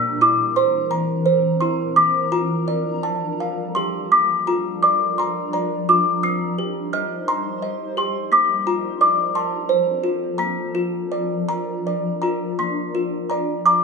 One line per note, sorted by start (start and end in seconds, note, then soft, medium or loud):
0.00 1.94 E3 medium
0.00 1.26 A#3 medium
0.00 1.94 C4 medium
0.00 1.95 A#4 medium
0.00 0.23 E6 loud
0.21 1.60 E4 medium
0.21 0.57 D6 loud
0.56 1.24 C5 medium
0.56 0.88 C6 medium
0.91 1.96 A#5 medium
1.26 1.96 C5 medium
1.61 1.96 E4 medium
1.61 1.97 C6 medium
1.96 3.02 F3 medium
1.96 3.04 A#3 medium
1.96 3.02 D4 medium
1.96 3.02 A#4 medium
1.96 2.33 D6 medium
2.32 3.04 F4 medium
2.32 3.06 A#5 medium
2.68 3.04 D5 medium
3.03 4.10 G3 medium
3.03 4.10 F4 medium
3.03 4.10 A4 medium
3.03 3.78 A5 medium
3.40 4.12 F5 medium
3.75 4.12 G4 medium
3.75 4.12 C6 medium
4.10 6.20 F3 medium
4.10 5.53 A#3 medium
4.10 6.20 D4 medium
4.10 6.20 A#4 medium
4.10 4.48 D6 medium
4.47 5.88 F4 medium
4.47 4.84 A#5 medium
4.83 5.53 D5 medium
4.83 5.19 D6 medium
5.18 5.52 A#5 medium
5.18 5.54 C6 medium
5.53 6.23 D5 medium
5.53 5.89 A#5 medium
5.89 6.23 F4 medium
5.89 6.24 D6 medium
6.23 8.29 G3 medium
6.23 7.62 C4 medium
6.23 8.29 D#4 medium
6.23 8.29 C5 medium
6.23 6.95 D#6 medium
6.58 7.96 G4 medium
6.93 7.61 D#5 medium
6.93 7.29 F6 medium
7.28 7.99 A#5 medium
7.28 7.97 C6 medium
7.62 8.32 D#5 medium
7.97 8.32 G4 medium
7.97 8.13 C6 medium
8.30 12.54 F3 medium
8.30 9.35 A#3 medium
8.30 9.33 A#4 medium
8.30 8.64 D6 medium
8.67 9.35 F4 medium
8.67 8.98 A#5 medium
9.01 9.35 D5 medium
9.01 9.33 D6 medium
9.35 10.38 C4 medium
9.35 10.38 A4 medium
9.35 10.39 A5 medium
9.35 10.00 C6 medium
9.69 10.39 C5 medium
10.04 10.39 F4 medium
10.38 11.85 A#3 medium
10.38 12.56 D4 medium
10.38 12.56 A#4 medium
10.38 11.47 A#5 loud
10.75 12.22 F4 medium
11.12 11.86 D5 medium
11.49 12.20 A#5 medium
11.87 12.59 D5 medium
12.22 12.59 F4 medium
12.22 12.59 A#5 medium
12.59 13.84 F3 medium
12.59 13.84 A#3 medium
12.59 13.84 D4 medium
12.59 13.84 A#4 medium
12.59 13.32 C6 medium
12.95 13.84 F4 medium
13.30 13.84 D5 medium
13.30 13.63 A#5 medium
13.66 13.84 A#5 medium
13.66 13.84 D6 medium